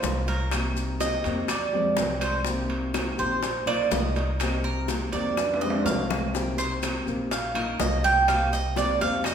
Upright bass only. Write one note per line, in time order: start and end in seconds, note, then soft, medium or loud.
0.03 1.18 C2 medium
1.26 1.94 F2 medium
1.98 3.13 C2 medium
3.19 3.88 A#1 medium
3.91 5.06 C2 medium
5.13 5.82 F2 medium
5.85 7.00 C2 medium
7.07 7.76 A#1 medium
7.80 8.95 C2 medium
9.02 9.35 F2 medium